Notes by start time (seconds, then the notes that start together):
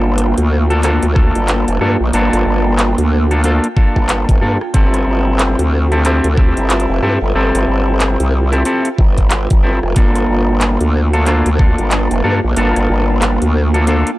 Already playing: G1 A#3 D4 F4 A4 E5 G5
0.18 closed hi-hat
0.38 D2, closed hi-hat
0.70 A#3 D4 F4 A4, closed hi-hat
0.83 A#3 D4 F4 A4, clap, closed hi-hat
1.03 D2, closed hi-hat
1.15 A#3 D4 F4 A4, kick, cross-stick
1.35 G1, closed hi-hat
1.48 clap, closed hi-hat
1.68 F1, closed hi-hat
1.81 G2 A#3 D4 F4 A4, cross-stick
2.00 A#1
2.13 G1 A#3 D4 F4 A4, closed hi-hat
2.33 G1, cross-stick, closed hi-hat
2.46 G1
2.79 clap, closed hi-hat
2.98 D2, closed hi-hat
3.31 A#3 D4 F4 A4, closed hi-hat
3.44 A#3 D4 F4 A4, closed hi-hat
3.64 closed hi-hat
3.76 A#3 D4 F4 A4, kick
3.96 G1, kick
4.09 clap, closed hi-hat
4.29 F1, kick, closed hi-hat
4.41 G2 A#3 D4 F4 A4
4.61 cross-stick
4.74 G1 C4 E4 G4 A4, kick, closed hi-hat
4.88 E5
4.94 A4, cross-stick, closed hi-hat
5.07 G1
5.39 clap, closed hi-hat
5.59 D2, closed hi-hat
5.92 C4 E4 G4 A4, closed hi-hat
6.05 C4 E4 G4 A4, clap, closed hi-hat
6.24 D2, closed hi-hat
6.37 C4 E4 G4 A4, kick, cross-stick
6.57 G1, closed hi-hat
6.70 clap, closed hi-hat
6.80 closed hi-hat
6.90 F1
7.03 G2 C4 E4 G4 A4, cross-stick
7.22 G1
7.35 G1 C4 E4 G4 A4
7.55 G1, cross-stick, closed hi-hat
7.68 G1
8.00 clap, closed hi-hat
8.20 C2, closed hi-hat
8.52 C4 E4 G4 A4, closed hi-hat
8.65 C4 E4 G4 A4, closed hi-hat
8.85 closed hi-hat
8.98 G1, kick
9.18 kick, closed hi-hat
9.31 clap, closed hi-hat
9.50 G1, kick, closed hi-hat
9.63 C4 E4 G4 A4
9.83 F1, cross-stick
9.96 A#3 D4 F4 A4, kick, closed hi-hat
10.15 cross-stick, closed hi-hat
10.29 G1
10.40 A#3
10.61 clap, closed hi-hat
10.81 D2, closed hi-hat
11.13 A#3 D4 F4 A4, closed hi-hat
11.26 A#3 D4 F4 A4, clap, closed hi-hat
11.46 D2, closed hi-hat
11.59 A#3 D4 F4 A4, kick, cross-stick
11.78 G1, closed hi-hat
11.91 clap, closed hi-hat
12.11 F1, closed hi-hat
12.24 G2 A#3 D4 F4 A4, cross-stick
12.44 A#1
12.56 G1 A#3 D4 F4 A4, closed hi-hat
12.76 G1, cross-stick, closed hi-hat
12.90 G1
13.22 clap, closed hi-hat
13.42 D2, closed hi-hat
13.74 A#3 D4 F4 A4, closed hi-hat
13.87 A#3 D4 F4 A4, closed hi-hat
14.07 closed hi-hat